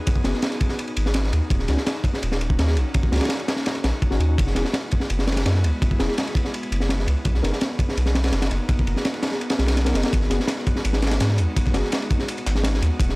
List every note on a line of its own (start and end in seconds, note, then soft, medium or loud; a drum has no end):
0.00 1.47 B3 medium
0.00 4.34 D#4 medium
0.00 7.21 F#4 medium
0.00 1.48 G#4 medium
0.07 kick loud
0.07 ride medium
0.16 kick loud
0.24 0.33 F#1 medium
0.24 0.38 B3 medium
0.24 0.38 F#4 medium
0.24 0.38 G#4 medium
0.24 snare loud
0.24 ride medium
0.34 snare soft
0.42 snare loud
0.42 ride medium
0.52 ride soft
0.61 kick medium
0.61 ride medium
0.69 snare soft
0.79 ride medium
0.87 ride soft
0.97 1.31 G#1 medium
0.97 ride medium
1.06 snare soft
1.14 snare loud
1.14 ride medium
1.24 snare medium
1.33 1.41 D#2 loud
1.33 ride medium
1.50 1.67 D#1 loud
1.50 4.35 A#3 medium
1.50 4.35 C#4 medium
1.50 kick loud
1.50 ride medium
1.59 snare soft
1.68 1.77 C#2 medium
1.68 1.77 C#4 medium
1.68 1.77 D#4 medium
1.68 1.77 F#4 medium
1.68 snare medium
1.68 ride medium
1.77 snare soft
1.87 snare loud
1.87 ride medium
2.04 kick medium
2.04 ride medium
2.14 snare medium
2.23 2.57 D#1 medium
2.23 ride medium
2.32 snare medium
2.41 ride medium
2.50 kick medium
2.58 2.78 D#2 loud
2.58 snare loud
2.58 ride medium
2.67 snare medium
2.76 2.84 A#1 medium
2.76 ride medium
2.94 kick loud
2.94 ride medium
3.03 kick loud
3.12 3.20 C#2 medium
3.12 3.25 C#4 medium
3.12 3.25 D#4 medium
3.12 3.25 F#4 medium
3.12 snare medium
3.12 ride medium
3.16 snare medium
3.16 ride medium
3.21 snare medium
3.21 ride medium
3.25 snare medium
3.25 ride medium
3.29 snare loud
3.29 ride medium
3.40 ride soft
3.48 snare loud
3.48 ride medium
3.56 snare medium
3.66 snare loud
3.66 ride medium
3.75 ride soft
3.84 3.92 A#1 medium
3.84 snare loud
3.84 ride medium
4.02 kick medium
4.02 ride medium
4.11 4.19 G#1 medium
4.11 4.24 C#4 medium
4.11 4.24 D#4 medium
4.11 4.24 F#4 loud
4.11 snare medium
4.20 4.36 D#2 loud
4.20 ride medium
4.28 4.37 C#4 medium
4.28 4.37 D#4 medium
4.28 4.37 F#4 medium
4.38 4.54 F#1 loud
4.38 7.22 G#3 medium
4.38 12.96 B3 medium
4.38 7.22 E4 medium
4.38 kick loud
4.38 ride loud
4.47 snare soft
4.55 4.64 E1 medium
4.55 4.64 B3 medium
4.55 4.64 E4 medium
4.55 4.64 G#4 medium
4.55 snare medium
4.55 ride medium
4.65 snare soft
4.73 snare loud
4.73 ride medium
4.91 kick medium
4.91 ride medium
5.00 snare medium
5.10 5.44 F#1 medium
5.10 ride medium
5.19 snare medium
5.27 snare medium
5.27 ride medium
5.32 snare medium
5.32 ride medium
5.37 snare loud
5.37 ride medium
5.46 5.65 F#2 loud
5.46 snare loud
5.46 ride medium
5.55 snare soft
5.64 5.72 C#2 medium
5.64 ride medium
5.82 kick loud
5.82 ride medium
5.91 kick medium
5.99 6.08 E1 medium
5.99 6.13 B3 medium
5.99 6.13 E4 medium
5.99 6.13 G#4 medium
5.99 snare loud
5.99 ride medium
6.08 snare soft
6.18 snare loud
6.18 ride medium
6.27 ride soft
6.35 kick loud
6.35 ride medium
6.45 snare soft
6.54 ride medium
6.63 ride soft
6.71 7.06 F#1 medium
6.71 ride medium
6.80 snare soft
6.89 snare loud
6.89 ride medium
6.99 snare medium
7.07 7.15 C#2 loud
7.07 ride medium
7.25 7.41 B1 loud
7.25 10.10 A#3 medium
7.25 13.16 D#4 medium
7.25 13.16 F#4 medium
7.25 kick loud
7.25 ride medium
7.35 snare soft
7.43 7.51 F#1 medium
7.43 7.51 B3 medium
7.43 7.51 D#4 medium
7.43 7.51 A#4 medium
7.43 snare medium
7.43 ride medium
7.53 snare soft
7.61 snare loud
7.61 ride medium
7.79 kick loud
7.79 ride medium
7.89 snare medium
7.97 8.32 B1 medium
7.97 ride medium
8.06 snare medium
8.15 snare loud
8.15 ride medium
8.24 snare loud
8.24 ride medium
8.32 8.49 F#1 loud
8.32 snare loud
8.32 ride medium
8.42 snare loud
8.42 ride medium
8.51 8.59 F#1 medium
8.51 ride medium
8.69 kick loud
8.69 ride medium
8.79 kick medium
8.87 8.95 F#1 medium
8.87 ride medium
8.96 snare soft
9.05 snare loud
9.05 ride medium
9.14 ride soft
9.23 snare loud
9.23 ride medium
9.32 snare soft
9.41 ride medium
9.50 snare loud
9.50 ride medium
9.59 9.93 B1 medium
9.59 snare loud
9.59 ride medium
9.68 snare loud
9.68 ride medium
9.77 snare loud
9.77 ride medium
9.85 9.99 B3 medium
9.85 9.99 D#4 medium
9.85 9.99 A#4 loud
9.85 snare loud
9.85 ride medium
9.95 10.03 F#1 loud
9.95 snare medium
9.95 ride medium
10.03 10.12 B3 medium
10.03 10.12 D#4 medium
10.03 10.12 A#4 medium
10.03 snare loud
10.03 ride medium
10.13 10.29 G#1 loud
10.13 12.97 G#3 medium
10.13 kick loud
10.13 closed hi-hat medium
10.13 ride medium
10.21 snare soft
10.30 10.39 F#1 medium
10.30 10.39 B3 medium
10.30 10.39 F#4 medium
10.30 10.39 G#4 loud
10.30 snare medium
10.30 closed hi-hat medium
10.30 ride medium
10.40 snare soft
10.48 snare loud
10.48 closed hi-hat medium
10.48 ride medium
10.58 snare soft
10.67 kick loud
10.67 closed hi-hat medium
10.67 ride medium
10.76 snare medium
10.85 11.19 G#1 medium
10.85 closed hi-hat medium
10.85 ride medium
10.93 snare medium
11.02 snare medium
11.02 closed hi-hat medium
11.02 ride medium
11.07 snare medium
11.07 ride medium
11.11 snare loud
11.11 closed hi-hat soft
11.11 ride medium
11.20 11.40 G#2 loud
11.20 snare loud
11.20 closed hi-hat medium
11.20 ride medium
11.29 snare medium
11.38 11.47 D#2 medium
11.38 closed hi-hat medium
11.38 ride medium
11.56 kick loud
11.56 closed hi-hat medium
11.56 ride medium
11.66 kick loud
11.66 snare medium
11.74 11.83 F#1 medium
11.74 11.88 B3 medium
11.74 11.88 F#4 medium
11.74 11.88 G#4 medium
11.74 snare loud
11.74 closed hi-hat medium
11.74 ride medium
11.83 snare soft
11.92 snare loud
11.92 closed hi-hat medium
11.92 ride medium
12.02 ride soft
12.10 kick loud
12.10 closed hi-hat medium
12.10 ride medium
12.19 snare soft
12.28 closed hi-hat loud
12.28 ride medium
12.37 closed hi-hat soft
12.37 ride soft
12.46 12.81 G#1 medium
12.46 snare loud
12.46 closed hi-hat medium
12.46 ride medium
12.55 snare soft
12.64 snare loud
12.64 closed hi-hat medium
12.64 ride medium
12.74 snare medium
12.82 12.90 D#2 loud
12.82 closed hi-hat medium
12.82 ride medium
13.00 13.16 D#1 loud
13.00 13.16 A#3 medium
13.00 13.16 C#4 medium
13.00 kick loud
13.00 closed hi-hat medium
13.00 ride loud
13.09 snare soft